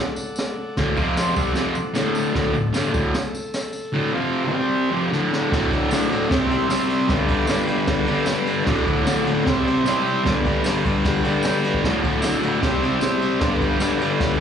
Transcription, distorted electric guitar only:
0.77 0.96 D2 loud
0.77 0.97 A2 medium
0.77 0.98 D3 loud
0.96 1.34 F2 medium
0.96 1.33 C3 medium
0.96 1.36 F3 medium
1.34 1.53 C3 medium
1.34 1.55 G3 loud
1.34 1.55 C4 loud
1.54 1.75 F2 medium
1.54 1.75 C3 loud
1.54 1.76 F3 loud
1.75 muted distorted electric guitar stroke medium
1.94 2.32 D2 loud
1.94 2.33 A2 loud
1.94 2.34 D3 loud
2.33 2.52 D2 loud
2.33 2.53 A2 loud
2.33 2.55 D3 loud
2.54 2.70 D2 medium
2.54 2.71 A2 medium
2.73 2.91 G2 medium
2.73 2.92 D3 loud
2.73 2.93 G3 loud
2.92 3.13 D2 medium
2.92 3.13 A2 medium
2.92 3.14 D3 loud
3.93 4.12 D2 medium
3.93 4.13 A2 medium
3.93 4.13 D3 loud
4.13 4.51 F2 medium
4.13 4.51 C3 loud
4.13 4.53 F3 loud
4.51 4.90 C3 loud
4.51 4.91 G3 medium
4.51 4.92 C4 loud
4.91 5.10 F2 medium
4.91 5.11 C3 medium
4.91 5.12 F3 loud
5.11 5.49 D2 loud
5.11 5.51 A2 loud
5.11 5.51 D3 loud
5.50 5.89 D2 medium
5.50 5.73 A2 medium
5.54 5.69 D3 loud
5.70 5.91 A2 medium
5.70 5.92 D3 medium
5.90 6.29 D2 loud
5.90 6.12 A2 loud
5.90 6.08 D3 loud
6.10 6.30 A2 medium
6.10 6.29 D3 medium
6.29 6.67 C3 loud
6.29 6.50 G3 loud
6.29 6.46 C4 loud
6.48 6.69 G3 medium
6.48 6.70 C4 medium
6.68 7.07 C3 medium
6.68 7.08 G3 medium
6.68 7.09 C4 medium
7.08 7.45 G2 medium
7.08 7.29 D3 loud
7.08 7.26 G3 loud
7.27 7.47 D3 medium
7.27 7.48 G3 medium
7.46 7.87 G2 loud
7.46 7.68 D3 loud
7.46 7.64 G3 loud
7.65 8.07 D3 medium
7.65 8.04 G3 medium
8.05 8.26 D3 medium
8.05 8.28 G3 medium
8.25 8.64 G2 medium
8.25 8.66 D3 medium
8.29 8.67 G3 medium
8.64 9.03 D2 medium
8.64 8.88 A2 loud
8.64 8.84 D3 loud
8.86 9.05 A2 medium
8.86 9.07 D3 medium
9.04 9.43 D2 loud
9.04 9.27 A2 loud
9.09 9.24 D3 loud
9.25 9.45 A2 medium
9.25 9.44 D3 medium
9.44 9.83 C3 medium
9.44 9.67 G3 loud
9.44 9.63 C4 loud
9.64 9.85 G3 medium
9.64 9.87 C4 medium
9.84 10.23 C3 medium
9.84 10.24 G3 medium
9.84 10.25 C4 medium
10.24 10.63 G2 loud
10.24 10.46 D3 loud
10.24 10.42 G3 loud
10.43 10.64 D3 medium
10.43 10.66 G3 medium
10.64 11.04 G2 loud
10.64 10.86 D3 loud
10.64 10.83 G3 loud
10.84 11.26 D3 medium
10.84 11.22 G3 medium
11.24 11.44 D3 medium
11.24 11.46 G3 medium
11.44 11.82 G2 medium
11.44 11.83 D3 medium
11.44 11.84 G3 medium
11.83 12.20 D2 loud
11.83 12.06 A2 loud
11.83 12.02 D3 medium
12.03 12.23 A2 medium
12.03 12.24 D3 medium
12.21 12.60 D2 medium
12.21 12.44 A2 loud
12.21 12.40 D3 loud
12.41 12.63 A2 medium
12.41 12.61 D3 medium
12.61 12.99 C3 medium
12.61 12.85 G3 loud
12.61 12.81 C4 loud
12.82 13.01 G3 medium
12.82 13.03 C4 medium
13.00 13.39 C3 medium
13.00 13.41 G3 medium
13.04 13.41 C4 medium
13.39 13.78 G2 loud
13.39 13.63 D3 medium
13.43 13.59 G3 loud
13.60 13.80 D3 medium
13.60 13.82 G3 medium
13.79 14.19 G2 loud
13.79 14.01 D3 loud
13.79 13.98 G3 loud
13.99 14.40 D3 medium
13.99 14.37 G3 medium

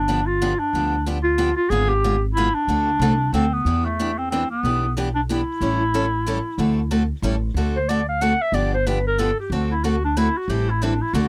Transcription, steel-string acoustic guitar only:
0.08 0.19 D3 medium
0.08 0.19 F3 medium
0.08 0.19 B3 medium
0.08 0.19 D4 medium
0.08 0.20 G4 medium
0.42 0.52 D3 medium
0.42 0.52 F3 medium
0.42 0.52 B3 medium
0.42 0.52 D4 medium
0.42 0.52 G4 medium
0.75 0.94 D3 medium
0.75 0.94 F3 medium
0.75 0.94 B3 medium
0.75 0.95 D4 medium
0.75 0.95 G4 medium
1.06 1.17 D3 medium
1.06 1.17 F3 medium
1.06 1.17 B3 medium
1.06 1.17 D4 medium
1.06 1.18 G4 medium
1.38 1.49 D3 medium
1.38 1.49 F3 medium
1.38 1.49 B3 medium
1.38 1.49 D4 loud
1.38 1.49 G4 loud
1.71 1.91 D3 medium
1.71 1.92 G#3 medium
1.71 1.92 B3 medium
1.71 1.92 F4 medium
1.71 1.92 G#4 medium
2.04 2.15 D3 medium
2.04 2.15 G#3 medium
2.04 2.15 B3 medium
2.04 2.15 F4 medium
2.04 2.15 G#4 medium
2.37 2.47 D3 medium
2.37 2.47 G#3 medium
2.37 2.48 B3 loud
2.37 2.48 F4 loud
2.37 2.48 G#4 loud
2.68 2.89 D3 medium
2.68 2.89 A3 medium
2.68 2.89 C4 medium
2.68 2.89 F#4 medium
2.68 2.90 A4 medium
3.02 3.12 D3 medium
3.02 3.12 A3 medium
3.02 3.12 C4 medium
3.02 3.13 F#4 medium
3.02 3.13 A4 medium
3.34 3.45 D3 medium
3.34 3.44 A3 medium
3.34 3.45 C4 medium
3.34 3.45 F#4 medium
3.34 3.45 A4 medium
3.66 3.86 E3 medium
3.66 3.87 B3 medium
3.66 3.87 D4 medium
3.66 3.87 G4 medium
3.99 4.10 E3 medium
3.99 4.10 B3 medium
3.99 4.10 D4 medium
3.99 4.10 G4 medium
4.32 4.43 E3 medium
4.32 4.43 B3 medium
4.32 4.43 D4 medium
4.32 4.43 G4 medium
4.65 4.85 E3 medium
4.65 4.84 B3 medium
4.65 4.85 D4 medium
4.65 4.85 G4 medium
4.97 5.07 E3 medium
4.97 5.08 B3 medium
4.97 5.08 D4 medium
4.97 5.08 G4 medium
5.29 5.40 E3 medium
5.29 5.40 B3 medium
5.29 5.40 D4 loud
5.29 5.40 G4 medium
5.61 5.82 E3 medium
5.61 5.82 G3 medium
5.61 5.82 C#4 medium
5.61 5.82 E4 medium
5.61 5.82 A4 medium
5.94 6.05 E3 medium
5.94 6.05 G3 medium
5.94 6.05 C#4 medium
5.94 6.05 E4 medium
5.94 6.05 A4 medium
6.26 6.37 E3 medium
6.26 6.38 G3 medium
6.26 6.37 C#4 medium
6.26 6.38 E4 medium
6.26 6.38 A4 loud
6.58 6.79 D3 medium
6.58 6.79 A3 medium
6.58 6.79 C4 medium
6.58 6.79 F#4 medium
6.58 6.79 A4 medium
6.91 7.02 D3 medium
6.91 7.02 A3 medium
6.91 7.02 C4 medium
6.91 7.02 F#4 medium
6.91 7.02 A4 loud
7.23 7.34 E3 medium
7.23 7.35 G3 medium
7.23 7.35 C#4 loud
7.23 7.35 E4 medium
7.23 7.35 A4 loud
7.57 7.77 D3 medium
7.57 7.77 A3 medium
7.57 7.77 C4 medium
7.57 7.77 F#4 medium
7.57 7.77 A4 medium
7.89 8.00 D3 medium
7.89 8.00 A3 medium
7.89 8.00 C4 medium
7.89 8.00 F#4 medium
7.89 8.00 A4 medium
8.21 8.32 D3 medium
8.21 8.32 A3 medium
8.21 8.32 C4 medium
8.21 8.33 F#4 medium
8.21 8.33 A4 medium
8.54 8.74 D3 medium
8.54 8.74 F3 medium
8.54 8.74 B3 medium
8.54 8.74 D4 medium
8.54 8.74 G4 medium
8.87 8.97 D3 medium
8.87 8.97 F3 medium
8.87 8.97 B3 medium
8.87 8.98 D4 medium
8.87 8.98 G4 medium
9.18 9.29 D3 medium
9.18 9.30 F3 medium
9.18 9.30 B3 medium
9.18 9.30 D4 loud
9.18 9.30 G4 loud
9.52 9.72 D3 medium
9.52 9.72 A3 medium
9.52 9.72 C4 medium
9.52 9.72 F#4 medium
9.52 9.72 A4 medium
9.84 9.95 D3 medium
9.84 9.95 A3 medium
9.84 9.95 C4 medium
9.84 9.95 F#4 medium
9.84 9.95 A4 medium
10.17 10.27 D3 medium
10.17 10.27 A3 loud
10.17 10.27 C4 loud
10.17 10.28 F#4 loud
10.17 10.27 A4 medium
10.49 10.69 E3 medium
10.49 10.69 G3 medium
10.49 10.69 C4 medium
10.49 10.70 E4 medium
10.49 10.70 A4 medium
10.82 10.92 E3 medium
10.82 10.92 G3 medium
10.82 10.93 C4 medium
10.82 10.93 E4 medium
10.82 10.93 A4 medium
11.14 11.25 D3 medium
11.14 11.25 A3 medium
11.14 11.25 C4 medium
11.14 11.25 F#4 medium
11.14 11.25 A4 medium

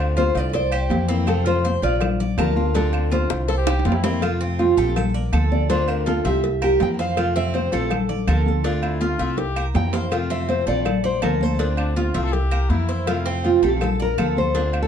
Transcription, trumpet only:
3.48 3.57 A4 loud
3.58 3.83 G4 loud
3.86 3.96 F4 medium
3.95 4.22 E4 medium
8.82 9.03 E4 medium
9.02 9.40 F4 loud
9.38 9.66 G4 loud
11.78 11.95 D4 medium
11.97 12.25 F4 medium
12.24 12.34 A4 loud
12.33 12.71 G4 loud
12.70 13.35 E4 medium

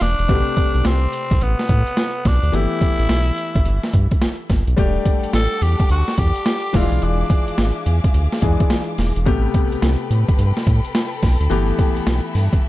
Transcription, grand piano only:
0.28 0.37 B2 medium
0.28 2.49 A3 medium
0.28 2.50 G4 medium
0.28 2.50 B4 medium
0.35 2.52 C3 medium
2.52 4.73 E3 medium
2.52 4.74 A3 medium
2.52 4.74 B3 medium
2.52 4.74 G4 medium
4.77 6.69 G3 medium
4.77 6.70 A3 medium
4.77 6.70 D4 medium
4.77 6.71 G4 medium
6.73 8.38 E3 medium
6.73 8.39 G#3 medium
6.73 8.39 D4 medium
6.73 6.83 E4 medium
6.82 8.43 F4 medium
8.42 9.26 E3 medium
8.42 9.26 G#3 medium
8.42 9.27 D4 medium
8.42 9.27 G#4 medium
9.25 11.46 C3 medium
9.25 11.47 A3 medium
9.25 11.47 B3 medium
9.25 11.47 G4 medium
11.50 12.69 E3 medium
11.50 12.69 A3 medium
11.50 12.69 B3 medium
11.50 12.69 G4 medium

